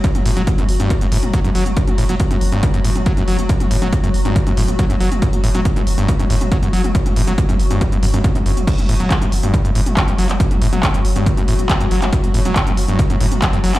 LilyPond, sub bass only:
\new Staff \with { instrumentName = "Sub bass" } { \clef bass \time 4/4 \key fis \minor \tempo 4 = 139 r16 fis,,16 fis,,16 fis,,16 r16 fis,,16 fis,,16 fis,,16 r16 fis,,16 fis,,16 fis,,16 r8 fis,,16 fis,,16 | r16 fis,,16 fis,,16 fis,,16 r16 fis,,16 fis,,16 fis,,16 r16 fis,,16 fis,,16 fis,,16 r8 fis,,16 fis,,16 | r16 fis,,16 fis,,16 fis,,16 r16 fis,,16 fis,,16 fis,,16 r16 fis,,16 fis,,16 fis,,16 r8 fis,,16 fis,,16 | r16 fis,,16 fis,,16 fis,,16 r16 fis,,16 fis,,16 fis,,16 r16 fis,,16 fis,,16 fis,,16 r8 fis,,16 fis,,16 |
r16 fis,,16 fis,,16 fis,,16 r16 fis,,16 fis,,16 fis,,16 r16 fis,,16 fis,,16 fis,,16 r8 fis,,16 fis,,16 | r16 fis,,16 fis,,16 fis,,16 r16 fis,,16 fis,,16 fis,,16 r16 fis,,16 fis,,16 fis,,16 r8 fis,,16 fis,,16 | r16 fis,,16 fis,,16 fis,,16 r16 fis,,16 fis,,16 fis,,16 r16 fis,,16 fis,,16 fis,,16 r8 fis,,16 fis,,16 | r16 fis,,16 fis,,16 fis,,16 r16 fis,,16 fis,,16 fis,,16 r16 fis,,16 fis,,16 fis,,16 r8 fis,,16 fis,,16 | }